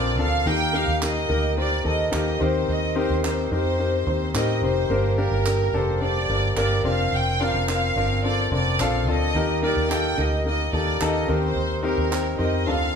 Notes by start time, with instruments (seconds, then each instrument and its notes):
Already playing: fingered electric bass A#1, grand piano C4 D4 F4 A4 A#4, violin section D5
0.18 fingered electric bass D2, grand piano C4 D4 F4 A4, violin section F5
0.46 fingered electric bass D#2, grand piano D#3 A#3 D#4 G4 A#4, violin section G5
0.73 grand piano A#3 D#4 G4 A#4, violin section F5
0.88 fingered electric bass D#2
1.01 grand piano A#3 D#4 G4 A#4, violin section D#5, clap
1.29 fingered electric bass D2, grand piano A#3 D#4 G4 A#4
1.56 grand piano A#3 D#4 G4 C5, violin section D5
1.84 fingered electric bass D#2, grand piano A#3 D#4 G4 A4, violin section D#5
2.11 fingered electric bass D#2, grand piano A#3 D#4 G4 A#4, violin section D#5, clap
2.40 fingered electric bass D#2, grand piano D#3 C4 D#4 G4 A#4, violin section C5
2.68 fingered electric bass D#2, violin section D#5
2.95 grand piano C4 D#4 G4 A#4, violin section C5
3.10 fingered electric bass D#2
3.24 grand piano C4 D#4 G4 A#4, violin section C5, clap
3.51 fingered electric bass F2, grand piano C4 D#4 G4 A#4, violin section C5
3.79 grand piano C4 D#4 G4 A#4
4.07 fingered electric bass D#2, grand piano C4 D#4 G4 C5
4.34 fingered electric bass A2, grand piano C4 D#4 G4 A#4, violin section D#5, clap
4.62 fingered electric bass F1, grand piano C4 D#4 G4 C5, violin section C5
4.90 fingered electric bass G1, grand piano G2 A#3 D4 G4 A#4
5.17 grand piano A#3 D4 G4 A#4, violin section A#4
5.32 fingered electric bass G1
5.46 grand piano A#3 D4 G4 A#4, clap
5.73 fingered electric bass F1, grand piano A#3 D4 G4 A4, violin section C5
6.01 grand piano A#3 D4 G4 C5, violin section D5
6.29 fingered electric bass G1, grand piano A#3 D4 G4 A#4
6.56 fingered electric bass G1, grand piano A#3 D4 G4 A#4, violin section D5, clap
6.84 fingered electric bass F1, grand piano C4 D4 F4 A#4, violin section F5
7.12 fingered electric bass F1, violin section G5
7.40 grand piano C4 D4 F4 A#4, violin section F5
7.54 fingered electric bass F1
7.69 grand piano C4 D4 F4 A#4, violin section F5, clap
7.96 fingered electric bass G1, grand piano C4 D4 F4 A#4
8.23 grand piano C4 D4 F4 A4, violin section D5
8.52 fingered electric bass F1, grand piano C4 D4 F4 A#4, violin section D5
8.80 fingered electric bass A#1, grand piano C4 D4 F4 A4, violin section F5, clap
9.07 fingered electric bass D2, grand piano C4 D4 F4 A4, violin section D#5
9.35 fingered electric bass D#2, grand piano D#3 A#3 D#4 G4 A#4
9.62 grand piano A#3 D#4 G4 A#4, violin section D5
9.77 fingered electric bass D#2
9.90 grand piano A#3 D#4 G4 A4, violin section G5, clap
10.17 fingered electric bass D2, grand piano A#3 D#4 G4 A#4, violin section D#5
10.45 grand piano A#3 D#4 G4 A#4, violin section D#5
10.73 fingered electric bass D#2, grand piano A#3 D#4 G4 A4, violin section D5
11.01 fingered electric bass D#2, grand piano A#3 D#4 G4 A4, violin section D#5, clap
11.28 fingered electric bass D#2, grand piano D#3 C4 D#4 G4 A#4, violin section C5
11.44 violin section C5
11.56 fingered electric bass D#2
11.83 grand piano C4 D#4 G4 A#4, violin section A#4
11.98 fingered electric bass D#2
12.11 grand piano C4 D#4 G4 C5, clap
12.38 fingered electric bass F2, grand piano C4 D#4 G4 A#4, violin section D#5
12.66 fingered electric bass D2, grand piano D3 C4 D4 F4 A4, violin section F5